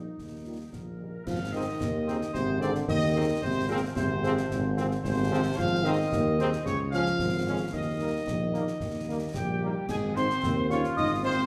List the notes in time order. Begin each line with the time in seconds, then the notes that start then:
Already playing: D#4
0.19 D#2, concert bass drum, snare
0.46 D#3 G3 A#3 F4
0.72 A#1 A#2 A#4, concert bass drum, snare
1.00 D#3 G3 A#3
1.25 G#1 F3 F5, concert bass drum, snare, crash
1.53 D#3 C4 D#4 G#4 D#5
1.80 D#2, concert bass drum, snare
2.08 D#3 C4 D#4 G#4, snare
2.21 snare
2.33 G#1 C3 C5, concert bass drum, snare
2.60 D3 D#3 C4 D#4 G#4 D5, snare
2.75 snare
2.88 D#2 D#3 D#5, concert bass drum, snare
3.14 D#3 C4 D#4 G#4
3.42 G#1 C3 C5, concert bass drum, snare
3.68 A#2 F3 C4 F4 G#4 A#4
3.95 G#1 C3 C5, concert bass drum, snare
4.23 F3 C4 F4 G#4, snare
4.37 snare
4.50 G#1, concert bass drum, snare
4.77 F3 C4 F4 G#4, snare
4.91 snare
5.04 G#1 C3 C5, concert bass drum, snare
5.31 F3 C4 F4 G#4
5.57 G#1 F3 F5, concert bass drum, snare, crash
5.84 D#3 C4 D#4 G#4 D#5
6.12 D#2, concert bass drum, snare
6.39 D#3 C4 D#4 G#4, snare
6.53 snare
6.65 C#2 C#3 C#5, concert bass drum, snare
6.90 F3 G#3 C#4 G#4 F5, snare
6.94 C#4
7.06 snare
7.19 G#1, concert bass drum, snare
7.47 G#3 C#4 G#4
7.72 D#2 D#3 D#5, concert bass drum, snare
8.00 G3 A#3 D#4
8.27 A#1, concert bass drum, snare
8.53 G3 A#3 D#4, snare
8.67 snare
8.80 D#2, concert bass drum, snare
9.08 G3 A#3 D#4
9.34 A#1 G3 G4 G5, concert bass drum, snare
9.62 G3 A#3 D#4
9.89 G#1 G#3 G#4 G#5, concert bass drum, snare, crash
10.16 G#3 C4 D#4 C5 C6, snare
10.30 snare
10.42 D#2 C4, concert bass drum, snare
10.70 G#3 C4 C#4 D#4 F4 C#5 C#6, snare
10.84 snare
10.97 G#1 D#4 D#5 D#6, concert bass drum, snare
11.24 G#3 C4 D#4 C5 C6